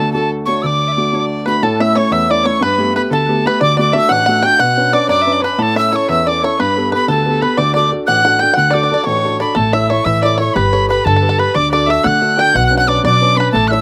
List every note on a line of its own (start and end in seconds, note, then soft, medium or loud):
0.00 0.61 D2 medium
0.00 0.12 A3 soft
0.00 0.13 D4 soft
0.00 0.13 F#4 soft
0.00 0.14 A4 medium
0.00 0.12 A5 medium
0.13 0.46 A3 soft
0.13 0.46 D4 soft
0.13 0.46 F#4 medium
0.13 0.31 A4 medium
0.13 0.30 A5 medium
0.46 0.63 A3 soft
0.46 0.63 D4 soft
0.46 0.64 F#4 medium
0.46 0.65 C#5 medium
0.46 0.63 C#6 medium
0.62 1.60 D2 medium
0.62 0.89 D5 medium
0.62 0.67 E6 medium
0.66 1.25 D6 medium
0.88 1.16 D5 medium
0.88 0.93 E5 soft
0.97 1.11 A3 soft
0.97 1.11 D4 soft
0.97 1.11 F#4 medium
1.12 1.45 A3 soft
1.12 1.45 D4 soft
1.12 1.46 F#4 soft
1.12 1.21 C#5 soft
1.19 1.47 D5 medium
1.46 1.62 A3 soft
1.46 1.62 D4 soft
1.46 1.63 F#4 medium
1.46 1.61 B4 medium
1.46 1.55 B4 medium
1.46 1.64 B5 medium
1.63 1.95 A2 medium
1.63 1.79 A4 medium
1.63 1.83 A4 medium
1.63 1.83 A5 medium
1.80 1.94 A3 soft
1.80 1.94 C#4 soft
1.80 1.95 E4 soft
1.80 1.95 E5 medium
1.80 1.99 E5 medium
1.80 1.98 E6 medium
1.95 2.23 A3 medium
1.95 2.23 C#4 soft
1.95 2.23 E4 soft
1.95 2.11 C#5 medium
1.95 2.14 C#5 medium
1.95 2.14 C#6 medium
2.11 2.44 E2 medium
2.11 2.29 E5 medium
2.11 2.32 E5 medium
2.11 2.32 E6 medium
2.29 2.43 A3 soft
2.29 2.44 C#4 soft
2.29 2.45 E4 medium
2.29 2.45 D5 medium
2.29 2.48 D6 medium
2.43 2.58 A3 soft
2.43 2.58 C#4 soft
2.43 2.59 E4 medium
2.43 2.60 C#5 medium
2.43 2.61 C#5 medium
2.43 2.64 C#6 medium
2.61 2.94 G2 medium
2.61 2.93 B4 medium
2.61 2.95 B5 medium
2.78 2.93 A3 soft
2.78 2.94 B3 soft
2.78 2.94 G4 medium
2.95 3.22 A3 soft
2.95 3.22 B3 soft
2.95 3.23 G4 soft
2.95 3.12 B4 medium
2.95 3.11 B4 medium
2.95 3.02 B5 medium
3.10 3.44 D2 medium
3.10 3.47 A4 medium
3.10 3.43 A4 medium
3.10 3.48 A5 medium
3.28 3.44 A3 soft
3.28 3.44 B3 soft
3.28 3.44 G4 medium
3.45 3.58 A3 medium
3.45 3.58 B3 soft
3.45 3.58 G4 medium
3.45 3.61 B4 medium
3.45 3.62 B5 medium
3.60 3.94 D2 medium
3.60 3.76 D5 medium
3.60 3.78 D6 loud
3.77 3.93 A3 soft
3.77 3.93 D4 soft
3.77 3.94 F#4 medium
3.77 3.94 D5 medium
3.77 3.93 D5 medium
3.77 3.94 D6 medium
3.93 4.21 A3 medium
3.93 4.22 D4 soft
3.93 4.22 F#4 medium
3.93 4.11 E5 loud
3.93 4.09 E5 medium
3.97 4.13 E6 loud
4.09 4.43 A1 medium
4.09 4.25 F#5 medium
4.09 4.44 F#5 medium
4.09 4.47 F#6 loud
4.26 4.41 A3 medium
4.26 4.42 D4 soft
4.26 4.43 F#4 medium
4.26 4.42 F#5 medium
4.43 4.56 A3 soft
4.43 4.57 D4 soft
4.43 4.57 F#4 medium
4.43 4.58 G5 medium
4.43 4.62 G6 loud
4.58 4.92 B2 medium
4.58 4.94 F#5 medium
4.58 4.91 F#5 medium
4.58 4.95 F#6 medium
4.77 4.91 C#4 soft
4.77 4.91 D4 soft
4.77 4.91 B4 medium
4.92 5.20 C#4 soft
4.92 5.20 D4 soft
4.92 5.20 B4 soft
4.92 5.08 D5 medium
4.92 5.09 D6 medium
5.08 5.41 F#2 medium
5.08 5.23 D5 medium
5.08 5.37 D5 medium
5.08 5.41 D6 medium
5.21 5.34 E5 medium
5.26 5.40 C#4 soft
5.26 5.40 D4 soft
5.26 5.41 B4 medium
5.32 5.43 D5 medium
5.40 5.55 C#4 soft
5.40 5.55 D4 soft
5.40 5.60 B4 medium
5.40 5.56 B4 medium
5.40 5.59 B4 medium
5.40 5.44 C#5 soft
5.40 5.64 B5 medium
5.58 5.91 A2 medium
5.58 5.75 A4 medium
5.58 5.78 A4 medium
5.58 5.77 A5 medium
5.75 5.91 C#4 soft
5.75 5.91 E4 soft
5.75 5.92 A4 medium
5.75 5.93 E5 medium
5.75 5.91 E5 medium
5.75 5.97 E6 medium
5.92 6.20 C#4 soft
5.92 6.20 E4 soft
5.92 6.20 A4 medium
5.92 6.10 C#5 medium
5.92 6.08 C#5 medium
5.92 6.10 C#6 medium
6.09 6.41 E2 medium
6.09 6.25 E5 medium
6.09 6.27 E5 medium
6.09 6.30 E6 loud
6.26 6.41 C#4 soft
6.26 6.41 E4 soft
6.26 6.42 A4 soft
6.26 6.38 D5 medium
6.26 6.42 D5 medium
6.26 6.45 D6 medium
6.38 6.55 C#4 soft
6.38 6.58 C#5 medium
6.38 6.44 D5 soft
6.43 6.56 E4 soft
6.43 6.56 A4 medium
6.43 6.58 C#5 medium
6.43 6.62 C#6 medium
6.59 6.92 G2 medium
6.59 6.90 B4 medium
6.59 6.93 B5 medium
6.77 6.91 B3 soft
6.77 6.91 G4 soft
6.77 6.92 A4 soft
6.92 7.19 B3 medium
6.92 7.19 G4 soft
6.92 7.20 A4 medium
6.92 7.09 B4 medium
6.92 7.08 B4 medium
6.92 7.08 B5 medium
7.08 7.41 D2 medium
7.08 7.43 A4 medium
7.08 7.25 A4 medium
7.08 7.43 A5 medium
7.26 7.40 B3 soft
7.26 7.41 G4 soft
7.26 7.41 A4 soft
7.26 7.45 A4 medium
7.42 7.55 B3 soft
7.42 7.55 G4 soft
7.42 7.55 A4 medium
7.42 7.57 B4 medium
7.42 7.61 B4 medium
7.42 7.59 B5 medium
7.57 7.90 D2 medium
7.57 7.73 D5 medium
7.57 7.75 D5 medium
7.57 7.75 D6 medium
7.74 7.90 D4 soft
7.74 7.90 F#4 soft
7.74 7.91 A4 medium
7.74 7.89 D5 medium
7.74 7.90 D5 medium
7.74 7.90 D6 medium
7.91 8.18 D4 soft
7.91 8.18 F#4 soft
7.91 8.19 A4 soft
8.07 8.40 A1 medium
8.07 8.44 F#5 medium
8.07 8.24 F#5 medium
8.07 8.42 F#6 medium
8.24 8.40 D4 soft
8.24 8.40 F#4 soft
8.24 8.40 A4 medium
8.24 8.39 F#5 medium
8.39 8.54 D4 soft
8.39 8.54 F#4 soft
8.39 8.54 A4 soft
8.39 8.53 G5 medium
8.39 8.54 G5 medium
8.39 8.56 G6 loud
8.53 8.90 D2 medium
8.53 8.70 F#5 medium
8.53 8.76 F#5 medium
8.53 8.58 G5 medium
8.53 8.75 F#6 medium
8.71 8.89 D4 soft
8.71 8.89 F#4 soft
8.71 8.82 D5 medium
8.71 9.07 D6 medium
8.75 8.90 A4 medium
8.75 8.85 D5 medium
8.83 8.93 D5 medium
8.83 8.95 D5 medium
8.91 9.17 D4 medium
8.91 9.18 F#4 soft
8.91 9.18 A4 medium
8.91 9.03 D5 medium
8.95 9.06 D5 medium
9.04 9.39 A1 medium
9.04 9.40 C#5 medium
9.04 9.43 C#5 medium
9.04 9.40 C#6 medium
9.24 9.38 D4 soft
9.24 9.39 F#4 soft
9.24 9.39 A4 soft
9.40 9.53 D4 soft
9.40 9.53 F#4 soft
9.40 9.53 A4 medium
9.40 9.55 D5 medium
9.40 9.56 D5 medium
9.40 9.58 B5 medium
9.55 9.97 A1 medium
9.55 9.89 A3 medium
9.55 9.72 A4 medium
9.55 9.75 A4 medium
9.55 9.75 A5 medium
9.73 9.89 E4 soft
9.73 9.89 A4 soft
9.73 9.89 C#5 soft
9.73 9.89 E5 medium
9.73 10.04 E5 medium
9.73 9.91 E6 medium
9.90 10.17 E4 medium
9.90 10.17 A4 soft
9.90 10.06 C#5 medium
9.90 10.17 C#5 medium
9.90 10.06 C#6 medium
10.05 10.47 A2 medium
10.05 10.39 E3 medium
10.05 10.24 E5 medium
10.05 10.22 E5 medium
10.05 10.23 E6 medium
10.22 10.38 E4 medium
10.22 10.39 A4 soft
10.22 10.39 C#5 medium
10.22 10.41 D5 medium
10.22 10.37 D5 medium
10.22 10.39 D6 medium
10.38 10.52 E4 soft
10.38 10.53 A4 soft
10.38 10.54 C#5 medium
10.38 10.57 C#5 medium
10.38 10.53 C#5 soft
10.38 10.55 C#6 medium
10.54 10.97 G1 loud
10.54 10.88 G3 medium
10.54 10.89 B4 medium
10.54 10.72 B4 medium
10.54 10.88 B5 medium
10.73 10.87 G4 soft
10.73 10.87 A4 soft
10.73 10.88 B4 soft
10.73 10.88 C#5 medium
10.88 11.16 G4 medium
10.88 11.16 A4 soft
10.88 11.16 B4 medium
10.88 11.05 B4 medium
10.88 11.08 B4 medium
10.88 11.06 B5 medium
11.05 11.47 G2 medium
11.05 11.38 D3 medium
11.05 11.41 A4 medium
11.05 11.15 A4 medium
11.05 11.40 A5 medium
11.16 11.28 A4 medium
11.22 11.36 G4 soft
11.22 11.37 A4 soft
11.22 11.37 B4 soft
11.29 11.39 A4 medium
11.38 11.51 G4 soft
11.38 11.52 A4 soft
11.38 11.52 B4 medium
11.38 11.54 B4 medium
11.38 11.56 B4 medium
11.38 11.57 B5 medium
11.55 11.97 D2 medium
11.55 11.88 D3 medium
11.55 11.71 D5 medium
11.55 11.71 D6 medium
11.72 11.86 D4 soft
11.72 11.87 F#4 soft
11.72 11.87 A4 medium
11.72 11.88 D5 medium
11.72 11.89 D5 medium
11.72 11.92 D6 medium
11.87 12.15 D4 soft
11.87 12.15 F#4 soft
11.87 12.15 A4 soft
11.87 12.05 E5 medium
11.87 12.04 E5 medium
11.87 12.09 E6 medium
12.04 12.46 D3 loud
12.04 12.37 A3 medium
12.04 12.37 F#5 medium
12.04 12.36 F#5 medium
12.04 12.42 F#6 medium
12.21 12.36 D4 soft
12.21 12.36 F#4 soft
12.21 12.36 A4 medium
12.37 12.50 D4 medium
12.37 12.51 F#4 soft
12.37 12.51 A4 medium
12.37 12.53 G5 loud
12.37 12.54 G5 medium
12.37 12.58 G6 medium
12.54 12.96 B1 medium
12.54 12.87 B2 medium
12.54 12.65 F#5 medium
12.54 12.66 F#5 medium
12.54 12.66 F#6 medium
12.66 12.77 F#6 medium
12.71 12.85 C#4 soft
12.71 12.86 D4 soft
12.71 12.86 B4 soft
12.77 12.87 F#5 medium
12.77 12.83 F#5 medium
12.77 12.89 F#6 loud
12.87 13.14 C#4 medium
12.87 13.14 D4 soft
12.87 13.15 B4 medium
12.87 13.03 D5 medium
12.87 13.04 D6 medium
13.03 13.46 B2 medium
13.03 13.36 F#3 medium
13.03 13.37 D5 medium
13.03 13.39 D5 medium
13.03 13.39 D6 medium
13.21 13.35 C#4 soft
13.21 13.35 D4 soft
13.21 13.36 B4 soft
13.36 13.50 C#4 soft
13.36 13.50 D4 soft
13.36 13.55 B4 medium
13.36 13.50 B4 soft
13.36 13.51 B5 medium
13.40 13.55 B4 medium
13.52 13.81 A1 medium
13.52 13.81 A3 medium
13.52 13.71 A4 medium
13.52 13.69 A5 medium
13.68 13.81 E4 soft
13.68 13.81 A4 soft
13.68 13.81 E5 medium
13.68 13.81 E6 medium
13.68 13.72 F#6 medium
13.72 13.81 C#5 medium
13.72 13.81 E5 medium